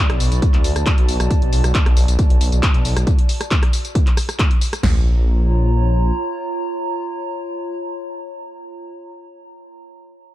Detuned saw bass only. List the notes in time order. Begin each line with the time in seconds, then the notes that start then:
0.10 B1
0.20 B1
0.32 B1
0.54 D2
0.64 D2
0.76 D2
0.98 B1
1.08 B1
1.20 B1
1.42 B1
1.53 B1
1.64 B1
1.86 B1
1.97 B1
2.08 B1
2.30 B1
2.41 B1
2.52 B1
2.74 B1
2.85 B1
2.97 B1
4.83 A#1